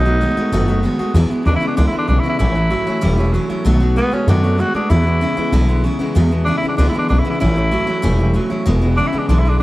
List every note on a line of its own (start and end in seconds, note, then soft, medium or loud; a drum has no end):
0.00 0.23 B1 medium
0.00 0.80 D#4 loud
0.06 0.19 B2 medium
0.06 0.20 F#3 medium
0.06 0.20 A3 soft
0.06 0.21 B3 medium
0.06 0.21 F#4 medium
0.20 0.35 B2 medium
0.20 0.37 D#3 medium
0.20 0.35 G#3 medium
0.20 0.37 A3 medium
0.20 0.37 B3 medium
0.20 0.36 F#4 medium
0.36 0.51 B2 medium
0.36 0.51 G#3 medium
0.36 0.52 A3 medium
0.36 0.52 B3 medium
0.36 0.53 F#4 medium
0.36 muted upright bass stroke medium
0.52 0.85 F#1 medium
0.52 0.68 B2 medium
0.52 0.67 B2 medium
0.52 0.68 D#3 medium
0.52 0.67 A3 medium
0.52 0.69 A3 loud
0.52 0.68 B3 loud
0.52 0.67 F#4 loud
0.68 0.82 B2 medium
0.68 0.83 A3 medium
0.68 0.83 B3 medium
0.68 0.84 F#4 medium
0.83 0.97 B2 medium
0.83 0.99 D#3 medium
0.83 0.98 G#3 medium
0.83 1.00 A3 medium
0.83 0.99 B3 medium
0.83 0.98 F#4 medium
0.98 1.13 B2 medium
0.98 1.13 G#3 medium
0.98 1.16 A3 medium
0.98 1.15 B3 medium
0.98 1.15 F#4 medium
0.98 muted upright bass stroke medium
1.14 1.29 E2 medium
1.14 1.25 E2 medium
1.14 1.31 E2 medium
1.14 1.29 B2 medium
1.14 1.31 B2 medium
1.14 1.31 E3 loud
1.14 1.30 G#3 medium
1.14 1.30 B3 medium
1.14 1.29 E4 loud
1.30 1.43 E2 medium
1.30 1.45 B2 medium
1.30 1.44 E3 soft
1.30 1.45 G#3 medium
1.30 1.46 B3 medium
1.30 1.46 E4 medium
1.30 muted upright bass stroke medium
1.44 1.59 D#2 medium
1.44 1.59 E2 medium
1.44 1.60 C#3 loud
1.44 1.62 E3 medium
1.44 1.61 G#3 medium
1.44 1.61 B3 medium
1.44 1.55 D4 loud
1.44 1.59 E4 medium
1.56 1.67 E4 loud
1.60 1.75 E2 medium
1.60 1.76 C#3 loud
1.60 1.76 E3 soft
1.60 1.76 G#3 medium
1.60 1.77 B3 medium
1.60 1.77 E4 medium
1.60 muted upright bass stroke medium
1.67 1.76 D4 medium
1.76 1.91 C#2 medium
1.76 1.91 E2 medium
1.76 1.93 E2 medium
1.76 1.93 B2 medium
1.76 1.91 D3 medium
1.76 1.93 E3 medium
1.76 1.93 G#3 medium
1.76 1.92 B3 medium
1.76 1.86 D4 medium
1.76 1.91 E4 medium
1.87 1.97 E4 medium
1.92 2.06 E2 medium
1.92 2.07 D3 medium
1.92 2.06 E3 soft
1.92 2.07 G#3 soft
1.92 2.08 B3 medium
1.92 2.09 E4 medium
1.98 2.08 D4 medium
2.07 2.22 B1 medium
2.07 2.22 E2 medium
2.07 2.22 C#3 medium
2.07 2.24 E3 medium
2.07 2.24 G#3 medium
2.07 2.24 B3 medium
2.07 2.21 D4 medium
2.07 2.22 E4 medium
2.19 2.28 E4 medium
2.23 2.38 E2 medium
2.23 2.38 C#3 medium
2.23 2.38 E3 soft
2.23 2.39 G#3 soft
2.23 2.40 B3 soft
2.23 2.39 E4 medium
2.23 muted upright bass stroke medium
2.29 2.38 E4 medium
2.39 2.73 A1 medium
2.39 2.55 A2 medium
2.39 2.53 A2 medium
2.39 2.56 E3 medium
2.39 2.54 E3 medium
2.39 2.56 A3 medium
2.39 2.55 C#4 medium
2.39 3.31 E4 loud
2.39 2.54 E4 medium
2.54 2.69 A2 medium
2.54 2.70 E3 medium
2.54 2.70 A3 soft
2.54 2.71 C#4 soft
2.54 2.71 E4 medium
2.70 2.85 A2 medium
2.70 2.87 E3 medium
2.70 2.85 F#3 loud
2.70 2.87 A3 medium
2.70 2.86 C#4 medium
2.70 2.85 E4 medium
2.86 3.01 A2 medium
2.86 3.01 F#3 medium
2.86 3.01 A3 medium
2.86 3.01 C#4 medium
2.86 3.01 E4 medium
2.86 muted upright bass stroke medium
3.01 3.36 E1 medium
3.01 3.18 A2 medium
3.01 3.16 A2 medium
3.01 3.18 E3 loud
3.01 3.17 G3 medium
3.01 3.18 A3 medium
3.01 3.18 C#4 loud
3.01 3.16 E4 loud
3.17 3.31 A2 medium
3.17 3.32 G3 medium
3.17 3.33 A3 medium
3.17 3.33 C#4 medium
3.17 3.34 E4 medium
3.32 3.47 A2 medium
3.32 3.50 E3 medium
3.32 3.48 F#3 medium
3.32 3.50 A3 medium
3.32 3.49 C#4 medium
3.32 3.48 E4 medium
3.49 3.63 A2 medium
3.49 3.64 F#3 medium
3.49 3.64 A3 soft
3.49 3.65 C#4 medium
3.49 3.66 E4 medium
3.49 muted upright bass stroke medium
3.65 3.98 B1 medium
3.65 3.81 B2 medium
3.65 3.80 B2 medium
3.65 3.81 D#3 loud
3.65 3.80 F#3 medium
3.65 3.81 A3 loud
3.65 3.81 B3 loud
3.65 3.79 F#4 loud
3.80 3.95 B2 medium
3.80 3.96 F#3 medium
3.80 3.96 A3 soft
3.80 3.97 B3 medium
3.80 3.96 F#4 medium
3.96 4.11 B2 medium
3.96 4.12 D#3 medium
3.96 4.11 G#3 medium
3.96 4.13 A3 medium
3.96 4.15 B3 loud
3.96 4.12 B3 medium
3.96 4.10 F#4 medium
4.11 4.27 B2 medium
4.11 4.27 G#3 medium
4.11 4.27 A3 soft
4.11 4.28 B3 medium
4.11 4.28 C#4 loud
4.11 4.28 F#4 medium
4.11 muted upright bass stroke medium
4.27 4.60 F#2 medium
4.27 4.44 B2 medium
4.27 4.42 B2 medium
4.27 4.44 D#3 medium
4.27 4.44 A3 medium
4.27 4.42 A3 loud
4.27 4.43 B3 medium
4.27 4.61 D4 medium
4.27 4.42 F#4 medium
4.43 4.57 B2 medium
4.43 4.57 A3 medium
4.43 4.59 A3 soft
4.43 4.59 B3 medium
4.43 4.59 F#4 medium
4.58 4.73 B2 medium
4.58 4.75 D#3 medium
4.58 4.73 G#3 medium
4.58 4.75 A3 medium
4.58 4.75 B3 medium
4.58 4.75 F#4 loud
4.58 4.73 F#4 medium
4.74 4.89 B2 medium
4.74 4.89 G#3 medium
4.74 4.91 A3 soft
4.74 4.90 B3 soft
4.74 4.91 D4 loud
4.74 4.90 F#4 medium
4.74 muted upright bass stroke medium
4.89 5.04 E2 medium
4.89 5.06 E2 medium
4.89 5.23 E2 medium
4.89 5.04 B2 medium
4.89 5.06 B2 medium
4.89 5.06 E3 medium
4.89 5.07 G#3 medium
4.89 5.06 B3 medium
4.89 5.81 E4 loud
4.89 5.05 E4 medium
5.05 5.20 E2 medium
5.05 5.20 B2 medium
5.05 5.20 E3 soft
5.05 5.21 G#3 soft
5.05 5.21 B3 medium
5.05 5.22 E4 medium
5.21 5.36 E2 medium
5.21 5.36 C#3 loud
5.21 5.37 E3 medium
5.21 5.37 G#3 medium
5.21 5.36 B3 medium
5.21 5.36 E4 medium
5.37 5.51 E2 medium
5.37 5.52 C#3 medium
5.37 5.52 E3 soft
5.37 5.52 G#3 medium
5.37 5.52 B3 medium
5.37 5.52 E4 medium
5.37 muted upright bass stroke medium
5.52 5.85 B1 medium
5.52 5.69 E2 medium
5.52 5.67 E2 medium
5.52 5.69 B2 medium
5.52 5.67 D3 loud
5.52 5.69 E3 medium
5.52 5.69 G#3 loud
5.52 5.68 B3 loud
5.52 5.67 E4 loud
5.68 5.83 E2 medium
5.68 5.83 D3 medium
5.68 5.83 E3 medium
5.68 5.83 G#3 medium
5.68 5.84 B3 medium
5.68 5.84 E4 medium
5.84 5.98 E2 medium
5.84 5.99 C#3 medium
5.84 6.00 E3 medium
5.84 6.00 G#3 medium
5.84 5.99 B3 medium
5.84 5.98 E4 medium
5.99 6.15 E2 medium
5.99 6.15 C#3 medium
5.99 6.15 E3 soft
5.99 6.15 G#3 medium
5.99 6.15 B3 medium
5.99 6.15 E4 medium
5.99 muted upright bass stroke medium
6.15 6.31 E2 medium
6.15 6.49 E2 medium
6.15 6.30 E2 medium
6.15 6.31 B2 medium
6.15 6.30 B2 medium
6.15 6.32 E3 medium
6.15 6.32 G#3 medium
6.15 6.31 B3 loud
6.15 6.30 E4 loud
6.31 6.46 E2 medium
6.31 6.46 B2 medium
6.31 6.45 E3 soft
6.31 6.46 G#3 soft
6.31 6.46 B3 medium
6.31 6.47 E4 medium
6.45 6.62 E2 medium
6.45 6.62 C#3 loud
6.45 6.62 E3 medium
6.45 6.63 G#3 medium
6.45 6.63 B3 medium
6.45 6.56 D4 loud
6.45 6.62 E4 medium
6.57 6.68 E4 medium
6.63 6.77 E2 medium
6.63 6.78 C#3 medium
6.63 6.78 E3 soft
6.63 6.78 G#3 medium
6.63 6.78 B3 medium
6.63 6.79 E4 medium
6.63 muted upright bass stroke medium
6.68 6.76 D4 medium
6.77 6.92 C#2 medium
6.77 6.94 E2 medium
6.77 6.93 E2 loud
6.77 6.94 B2 medium
6.77 6.93 D3 medium
6.77 6.94 E3 medium
6.77 6.93 G#3 medium
6.77 6.93 B3 loud
6.77 6.88 D4 medium
6.77 6.92 E4 loud
6.88 6.98 E4 medium
6.93 7.08 E2 medium
6.93 7.09 D3 medium
6.93 7.07 E3 soft
6.93 7.09 G#3 medium
6.93 7.09 B3 soft
6.93 7.10 E4 medium
6.93 muted upright bass stroke medium
6.98 7.09 D4 medium
7.09 7.23 B1 medium
7.09 7.24 E2 medium
7.09 7.24 C#3 medium
7.09 7.25 E3 medium
7.09 7.24 G#3 medium
7.09 7.24 B3 medium
7.09 7.20 D4 medium
7.09 7.23 E4 medium
7.18 7.29 E4 medium
7.25 7.40 E2 medium
7.25 7.40 C#3 medium
7.25 7.40 E3 soft
7.25 7.41 G#3 soft
7.25 7.41 B3 medium
7.25 7.41 E4 medium
7.29 7.40 E4 medium
7.40 7.75 A1 medium
7.40 7.56 A2 medium
7.40 7.55 A2 medium
7.40 7.57 E3 medium
7.40 7.56 E3 medium
7.40 7.57 A3 medium
7.40 7.56 C#4 medium
7.40 8.32 E4 loud
7.40 7.54 E4 medium
7.56 7.71 A2 medium
7.56 7.72 E3 medium
7.56 7.71 A3 soft
7.56 7.72 C#4 medium
7.56 7.72 E4 medium
7.71 7.87 A2 medium
7.71 7.88 E3 medium
7.71 7.87 F#3 loud
7.71 7.88 A3 medium
7.71 7.86 C#4 medium
7.71 7.86 E4 medium
7.87 8.02 A2 medium
7.87 8.03 F#3 medium
7.87 8.02 A3 medium
7.87 8.02 C#4 medium
7.87 8.03 E4 medium
7.87 muted upright bass stroke medium
8.02 8.37 E1 medium
8.02 8.19 A2 medium
8.02 8.18 A2 medium
8.02 8.19 E3 medium
8.02 8.18 G3 medium
8.02 8.19 A3 loud
8.02 8.18 C#4 loud
8.02 8.17 E4 loud
8.18 8.34 A2 medium
8.18 8.34 G3 medium
8.18 8.33 A3 soft
8.18 8.34 C#4 medium
8.18 8.35 E4 medium
8.34 8.50 A2 medium
8.34 8.50 E3 medium
8.34 8.50 F#3 loud
8.34 8.51 A3 medium
8.34 8.50 C#4 medium
8.34 8.49 E4 medium
8.50 8.65 A2 medium
8.50 8.65 F#3 medium
8.50 8.66 A3 medium
8.50 8.66 C#4 medium
8.50 8.66 E4 medium
8.50 muted upright bass stroke medium
8.66 8.99 E1 medium
8.66 8.82 E2 medium
8.66 8.81 E2 medium
8.66 8.82 B2 medium
8.66 8.81 B2 medium
8.66 8.82 E3 medium
8.66 8.81 G#3 loud
8.66 8.81 B3 loud
8.66 8.80 E4 medium
8.81 8.97 E2 medium
8.81 8.97 B2 medium
8.81 8.96 E3 soft
8.81 8.97 G#3 medium
8.81 8.98 B3 medium
8.81 8.98 E4 medium
8.97 9.11 E2 medium
8.97 9.12 C#3 loud
8.97 9.13 E3 medium
8.97 9.13 G#3 medium
8.97 9.12 B3 medium
8.97 9.08 D4 loud
8.97 9.11 E4 medium
9.07 9.20 E4 loud
9.12 9.27 E2 medium
9.12 9.28 C#3 medium
9.12 9.28 E3 medium
9.12 9.29 G#3 medium
9.12 9.29 B3 medium
9.12 9.29 E4 medium
9.12 muted upright bass stroke medium
9.18 9.27 D4 medium
9.28 9.62 B1 medium
9.28 9.45 E2 medium
9.28 9.43 E2 medium
9.28 9.45 B2 medium
9.28 9.44 D3 loud
9.28 9.45 E3 medium
9.28 9.46 G#3 medium
9.28 9.44 B3 medium
9.28 9.40 D4 medium
9.28 9.44 E4 loud
9.38 9.50 E4 medium
9.44 9.59 E2 medium
9.44 9.59 D3 medium
9.44 9.59 E3 soft
9.44 9.60 G#3 soft
9.44 9.61 B3 medium
9.44 9.61 E4 medium
9.48 9.59 D4 medium
9.60 9.63 D4 medium